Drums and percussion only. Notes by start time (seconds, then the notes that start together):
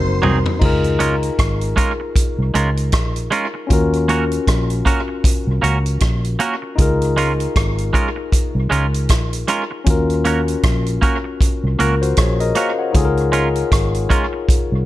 0.23 floor tom
0.46 floor tom
0.61 kick, crash
0.84 closed hi-hat
1.00 closed hi-hat
1.23 closed hi-hat
1.39 kick, cross-stick, closed hi-hat
1.61 closed hi-hat
1.77 kick, closed hi-hat
2.16 kick, closed hi-hat
2.55 closed hi-hat
2.77 closed hi-hat
2.92 kick, cross-stick, closed hi-hat
3.16 closed hi-hat
3.32 closed hi-hat
3.70 kick, closed hi-hat
3.93 closed hi-hat
4.09 closed hi-hat
4.31 closed hi-hat
4.47 kick, cross-stick, closed hi-hat
4.70 closed hi-hat
4.86 kick, closed hi-hat
5.24 kick, closed hi-hat
5.64 closed hi-hat
5.86 closed hi-hat
6.00 kick, cross-stick, closed hi-hat
6.24 closed hi-hat
6.40 closed hi-hat
6.78 kick, closed hi-hat
7.02 closed hi-hat
7.17 closed hi-hat
7.40 closed hi-hat
7.56 kick, cross-stick, closed hi-hat
7.78 closed hi-hat
7.94 kick, closed hi-hat
8.32 kick, closed hi-hat
8.72 closed hi-hat
8.94 closed hi-hat
9.09 kick, cross-stick, closed hi-hat
9.33 closed hi-hat
9.48 closed hi-hat
9.86 kick, closed hi-hat
10.10 closed hi-hat
10.25 closed hi-hat
10.48 closed hi-hat
10.63 kick, cross-stick, closed hi-hat
10.86 closed hi-hat
11.02 kick, closed hi-hat
11.41 kick, closed hi-hat
11.80 closed hi-hat
12.02 closed hi-hat
12.17 kick, cross-stick, closed hi-hat
12.40 closed hi-hat
12.55 closed hi-hat
12.95 kick, closed hi-hat
13.17 closed hi-hat
13.33 closed hi-hat
13.55 closed hi-hat
13.72 kick, cross-stick, closed hi-hat
13.94 closed hi-hat
14.10 kick, closed hi-hat
14.49 kick, closed hi-hat